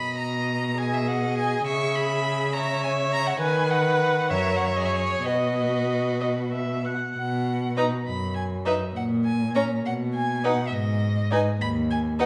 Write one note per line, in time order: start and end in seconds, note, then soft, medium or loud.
0.00 1.63 B2 soft
0.00 0.73 D#5 soft
0.00 0.17 B5 medium
0.18 0.79 A#5 medium
0.77 2.55 G#4 medium
0.77 1.65 D#5 soft
0.77 0.95 G#5 medium
0.93 1.09 E5 medium
1.08 1.37 F#5 medium
1.37 1.66 G#5 medium
1.67 3.37 C#3 medium
1.67 2.52 E5 soft
1.67 1.97 C#6 medium
1.95 2.55 B5 medium
2.53 3.40 C#5 medium
2.53 3.39 E5 medium
2.53 2.83 A#5 medium
2.83 2.91 G#5 medium
3.12 3.28 A#5 medium
3.27 3.39 F#5 medium
3.40 4.32 D#3 medium
3.40 4.27 B4 medium
3.40 4.29 B4 medium
3.40 3.71 G#5 medium
3.70 4.32 F#5 medium
4.30 5.25 F#2 medium
4.30 4.77 A#4 medium
4.30 5.24 C#5 medium
4.30 4.57 E5 medium
4.56 4.67 F#5 medium
4.66 4.78 E5 medium
4.76 5.27 G#4 soft
4.76 4.87 D#5 medium
4.85 4.94 E5 medium
4.95 5.28 C#5 medium
5.25 6.92 B2 medium
5.25 6.95 F#4 soft
5.25 6.85 B4 soft
5.25 6.13 D#5 soft
6.20 6.28 D#5 soft
6.53 6.86 E5 soft
6.84 7.16 F#5 soft
7.16 7.91 B2 medium
7.16 7.73 F#5 medium
7.77 7.91 D#4 soft
7.77 7.91 B4 soft
7.77 7.85 A#5 medium
8.06 8.81 F#2 soft
8.06 8.34 B5 medium
8.35 8.43 G#5 medium
8.65 8.79 D#4 soft
8.65 8.79 B4 soft
8.65 8.74 E5 medium
8.95 9.70 A#2 medium
8.95 9.04 F#5 soft
9.25 9.55 G#5 medium
9.55 9.69 C#4 soft
9.55 9.69 C#5 soft
9.55 9.63 A#5 medium
9.85 10.58 B2 medium
9.85 9.93 F#5 medium
10.14 10.46 G#5 medium
10.44 10.58 D#4 soft
10.44 10.58 B4 soft
10.44 10.69 F#5 medium
10.67 10.75 E5 soft
10.73 11.46 G#2 medium
10.73 11.31 D#5 medium
11.31 11.45 D#4 medium
11.31 11.46 B4 soft
11.31 11.39 G#5 medium
11.61 12.26 D#2 medium
11.61 11.69 B5 medium
11.91 11.99 G#5 medium
12.19 12.26 D#4 soft
12.19 12.26 B4 soft
12.19 12.26 F#5 medium